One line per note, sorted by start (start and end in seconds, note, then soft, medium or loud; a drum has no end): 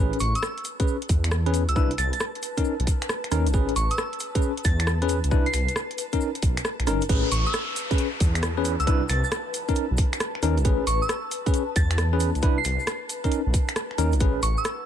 0.00 0.11 A1 loud
0.00 0.17 C#4 medium
0.00 0.17 G#4 medium
0.00 0.17 B4 medium
0.00 7.08 B4 medium
0.00 7.08 A5 medium
0.13 closed hi-hat soft
0.20 0.33 A1 medium
0.20 0.32 C#6 medium
0.20 open hi-hat loud
0.20 shaker loud
0.35 0.53 E6 medium
0.35 closed hi-hat medium
0.35 shaker soft
0.43 cross-stick loud
0.43 shaker medium
0.58 closed hi-hat soft
0.65 open hi-hat medium
0.65 shaker medium
0.80 0.96 C#4 medium
0.80 0.96 G#4 medium
0.80 0.96 B4 medium
0.80 kick loud
0.80 closed hi-hat medium
0.80 shaker soft
0.88 shaker medium
1.02 closed hi-hat medium
1.09 1.66 E2 medium
1.09 kick loud
1.09 open hi-hat loud
1.09 shaker medium
1.24 finger snap medium
1.24 closed hi-hat medium
1.24 shaker soft
1.31 cross-stick loud
1.31 shaker soft
1.46 1.62 C#4 medium
1.46 1.63 G#4 medium
1.46 1.62 B4 medium
1.46 closed hi-hat soft
1.54 open hi-hat medium
1.54 shaker medium
1.69 1.75 C#2 loud
1.69 1.73 E6 medium
1.69 closed hi-hat medium
1.69 shaker soft
1.76 1.89 C2 loud
1.76 1.91 D4 medium
1.76 1.91 E4 medium
1.76 1.91 B4 loud
1.76 1.86 E6 medium
1.76 kick loud
1.76 shaker soft
1.91 closed hi-hat soft
1.98 2.11 C2 medium
1.98 2.08 A6 medium
1.98 finger snap soft
1.98 open hi-hat loud
1.98 shaker medium
2.13 2.18 A6 medium
2.13 closed hi-hat medium
2.13 shaker soft
2.20 cross-stick loud
2.20 shaker soft
2.35 closed hi-hat soft
2.43 open hi-hat medium
2.43 shaker medium
2.57 2.74 C#4 medium
2.57 2.74 D#4 medium
2.57 2.74 A#4 medium
2.57 kick medium
2.57 closed hi-hat medium
2.57 shaker soft
2.65 shaker soft
2.80 2.86 B1 medium
2.80 closed hi-hat medium
2.87 kick loud
2.87 open hi-hat loud
2.87 shaker medium
3.02 finger snap medium
3.02 closed hi-hat medium
3.02 shaker soft
3.09 cross-stick loud
3.09 shaker medium
3.24 finger snap soft
3.24 closed hi-hat medium
3.31 3.48 D#2 medium
3.31 3.46 C#4 medium
3.31 3.46 D#4 medium
3.31 3.46 A#4 medium
3.31 cross-stick medium
3.31 open hi-hat medium
3.31 shaker medium
3.46 3.53 B1 medium
3.46 closed hi-hat medium
3.46 shaker soft
3.53 3.67 A1 loud
3.53 3.73 C#4 medium
3.53 3.73 G#4 medium
3.53 3.73 B4 medium
3.53 kick loud
3.53 shaker medium
3.69 closed hi-hat soft
3.76 3.89 A1 medium
3.76 3.88 C#6 medium
3.76 open hi-hat loud
3.76 shaker medium
3.91 4.09 E6 medium
3.91 closed hi-hat medium
3.91 shaker soft
3.98 cross-stick loud
3.98 shaker soft
4.13 closed hi-hat soft
4.20 open hi-hat loud
4.20 shaker medium
4.35 4.51 C#4 medium
4.35 4.51 G#4 medium
4.35 4.51 B4 medium
4.35 kick loud
4.35 closed hi-hat medium
4.35 shaker soft
4.42 shaker soft
4.57 closed hi-hat medium
4.64 5.21 E2 medium
4.64 4.85 A6 medium
4.64 kick loud
4.64 open hi-hat loud
4.64 shaker medium
4.79 finger snap medium
4.79 closed hi-hat medium
4.79 shaker soft
4.87 cross-stick loud
4.87 shaker soft
5.02 5.18 C#4 medium
5.02 5.18 G#4 medium
5.02 5.18 B4 loud
5.02 closed hi-hat medium
5.09 open hi-hat loud
5.09 shaker medium
5.24 5.31 C#2 loud
5.24 closed hi-hat medium
5.24 shaker soft
5.31 5.45 C2 loud
5.31 5.46 D4 loud
5.31 5.46 E4 medium
5.31 5.46 B4 loud
5.31 kick loud
5.31 shaker medium
5.46 5.76 C7 medium
5.46 closed hi-hat soft
5.54 5.67 C2 medium
5.54 finger snap soft
5.54 open hi-hat loud
5.54 shaker medium
5.68 closed hi-hat medium
5.68 shaker soft
5.76 cross-stick loud
5.76 shaker medium
5.91 closed hi-hat soft
5.98 open hi-hat loud
5.98 shaker loud
6.13 6.29 C#4 medium
6.13 6.29 D#4 medium
6.13 6.29 A#4 medium
6.13 kick medium
6.13 closed hi-hat medium
6.13 shaker soft
6.21 shaker soft
6.35 closed hi-hat medium
6.35 shaker soft
6.42 6.56 B1 loud
6.42 kick loud
6.42 open hi-hat loud
6.42 shaker medium
6.57 finger snap medium
6.57 closed hi-hat medium
6.57 shaker soft
6.65 cross-stick loud
6.65 shaker soft
6.80 6.89 B1 loud
6.80 finger snap soft
6.80 closed hi-hat medium
6.87 7.00 F#1 medium
6.87 7.02 C#4 medium
6.87 7.02 D#4 medium
6.87 7.02 A#4 medium
6.87 cross-stick medium
6.87 open hi-hat medium
6.87 shaker medium
7.01 closed hi-hat medium
7.01 shaker soft
7.09 7.22 A1 loud
7.09 7.29 C#4 medium
7.09 7.28 G#4 medium
7.09 7.28 B4 medium
7.09 14.22 B4 medium
7.09 14.22 A5 medium
7.09 kick loud
7.09 closed hi-hat medium
7.09 downlifter medium
7.09 shaker soft
7.31 7.45 A1 medium
7.31 7.43 C#6 medium
7.31 open hi-hat loud
7.31 shaker medium
7.46 7.64 E6 medium
7.46 shaker soft
7.53 cross-stick loud
7.53 closed hi-hat medium
7.53 shaker soft
7.76 open hi-hat loud
7.76 shaker loud
7.91 8.07 C#4 medium
7.91 8.07 G#4 medium
7.91 8.07 B4 medium
7.91 kick loud
7.91 closed hi-hat soft
7.91 shaker soft
7.98 closed hi-hat medium
7.98 shaker medium
8.20 8.77 E2 medium
8.20 kick loud
8.20 open hi-hat loud
8.20 shaker loud
8.35 finger snap medium
8.35 closed hi-hat medium
8.35 shaker soft
8.43 cross-stick loud
8.43 closed hi-hat medium
8.43 shaker soft
8.57 8.74 C#4 medium
8.57 8.74 G#4 medium
8.57 8.74 B4 loud
8.65 open hi-hat loud
8.65 shaker medium
8.80 8.86 C#2 loud
8.80 8.85 E6 medium
8.80 closed hi-hat soft
8.80 shaker soft
8.87 9.00 C2 medium
8.87 9.02 D4 loud
8.87 9.02 E4 medium
8.87 9.02 B4 loud
8.87 kick loud
8.87 closed hi-hat medium
8.87 shaker medium
9.09 9.22 C2 medium
9.09 9.19 A6 medium
9.09 finger snap soft
9.09 open hi-hat loud
9.09 shaker medium
9.24 9.29 A6 medium
9.24 shaker soft
9.32 cross-stick loud
9.32 closed hi-hat medium
9.32 shaker medium
9.54 open hi-hat loud
9.54 shaker medium
9.68 9.85 C#4 medium
9.68 9.85 D#4 medium
9.68 9.85 A#4 medium
9.68 kick medium
9.68 closed hi-hat soft
9.68 shaker soft
9.75 closed hi-hat medium
9.75 shaker medium
9.91 9.97 B1 medium
9.98 kick loud
9.98 open hi-hat loud
9.98 shaker loud
10.13 finger snap medium
10.13 closed hi-hat medium
10.13 shaker soft
10.20 cross-stick loud
10.20 closed hi-hat medium
10.20 shaker medium
10.35 finger snap soft
10.43 10.59 D#2 medium
10.43 10.57 C#4 medium
10.43 10.57 D#4 medium
10.43 10.57 A#4 loud
10.43 open hi-hat medium
10.43 shaker medium
10.57 10.64 B1 loud
10.57 closed hi-hat soft
10.57 shaker soft
10.65 10.78 A1 loud
10.65 10.84 C#4 medium
10.65 10.84 G#4 medium
10.65 10.84 B4 medium
10.65 kick loud
10.65 closed hi-hat medium
10.65 shaker medium
10.87 11.00 A1 medium
10.87 10.99 C#6 medium
10.87 open hi-hat loud
10.87 shaker loud
11.02 11.20 E6 medium
11.02 shaker soft
11.09 cross-stick loud
11.09 closed hi-hat medium
11.09 shaker medium
11.31 open hi-hat loud
11.31 shaker loud
11.46 11.63 C#4 medium
11.46 11.62 G#4 medium
11.46 11.62 B4 medium
11.46 kick loud
11.46 closed hi-hat soft
11.46 shaker soft
11.54 closed hi-hat medium
11.54 shaker medium
11.76 12.32 E2 medium
11.76 11.96 A6 medium
11.76 kick loud
11.76 open hi-hat loud
11.76 shaker loud
11.91 finger snap medium
11.91 closed hi-hat medium
11.91 shaker soft
11.98 cross-stick loud
11.98 closed hi-hat medium
11.98 shaker medium
12.13 12.29 C#4 medium
12.13 12.29 G#4 medium
12.13 12.29 B4 loud
12.20 open hi-hat medium
12.20 shaker medium
12.35 12.42 C#2 loud
12.35 closed hi-hat soft
12.35 shaker soft
12.42 12.56 C2 loud
12.42 12.57 D4 loud
12.42 12.57 E4 medium
12.42 12.57 B4 loud
12.42 kick loud
12.42 closed hi-hat medium
12.42 shaker medium
12.58 12.87 C7 medium
12.65 12.78 C2 medium
12.65 finger snap soft
12.65 open hi-hat loud
12.65 shaker loud
12.80 shaker soft
12.87 cross-stick loud
12.87 closed hi-hat medium
12.87 shaker medium
13.09 open hi-hat medium
13.09 shaker loud
13.24 13.40 C#4 medium
13.24 13.40 D#4 medium
13.24 13.40 A#4 medium
13.24 kick medium
13.24 closed hi-hat soft
13.24 shaker soft
13.32 closed hi-hat medium
13.32 shaker medium
13.46 13.53 B1 medium
13.54 kick loud
13.54 open hi-hat loud
13.54 shaker loud
13.68 finger snap medium
13.68 closed hi-hat medium
13.68 shaker soft
13.76 cross-stick loud
13.76 closed hi-hat medium
13.76 shaker medium
13.91 finger snap soft
13.98 14.15 D#2 medium
13.98 14.13 C#4 medium
13.98 14.13 D#4 medium
13.98 14.13 A#4 loud
13.98 open hi-hat medium
13.98 shaker loud
14.12 14.20 B1 loud
14.12 closed hi-hat soft
14.12 shaker soft
14.20 14.34 A1 loud
14.20 14.40 C#4 medium
14.20 14.86 F#4 medium
14.20 14.40 G#4 medium
14.20 14.40 B4 medium
14.20 14.86 F#5 medium
14.20 kick loud
14.20 closed hi-hat medium
14.20 shaker soft
14.43 14.56 A1 medium
14.43 14.55 C#6 medium
14.43 open hi-hat loud
14.43 shaker medium
14.58 14.75 E6 medium
14.58 shaker soft
14.65 cross-stick loud
14.65 closed hi-hat medium
14.65 shaker medium